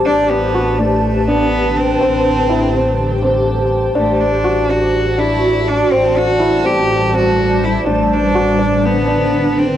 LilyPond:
<<
  \new Staff \with { instrumentName = "Ambient pad" } { \time 4/4 \key a \dorian \tempo 4 = 123 << { a''1~ | a''1 | a''1~ | a''1~ |
a''1 | } \\ { <d' b'>1 | <g' c''>1 | <fis' d''>1 | <g c''>1 |
<d' b'>1 | } >> }
  \new Staff \with { instrumentName = "Cello" } { \time 4/4 \key a \dorian d'8 b4 a4 b4 c'8~ | c'2~ c'8 r4. | a8 d'4 fis'4 e'4 d'8 | c'8 fis'4 g'4 fis'4 e'8 |
a8 d'4. b4. c'8 | }
  \new Staff \with { instrumentName = "Felt piano" } { \time 4/4 \key a \dorian d'4 fis'8 d'4 d'4 r8 | c'4 e'8 c'4 c'4 r8 | d'4 fis'8 d'4 d'4 r8 | c'4 e'8 c'4 c'4 r8 |
d'4 fis'8 d'4 d'4 r8 | }
  \new Staff \with { instrumentName = "Double bass section" } { \clef bass \time 4/4 \key a \dorian a,,1 | a,,1 | a,,1 | a,,1 |
a,,1 | }
>>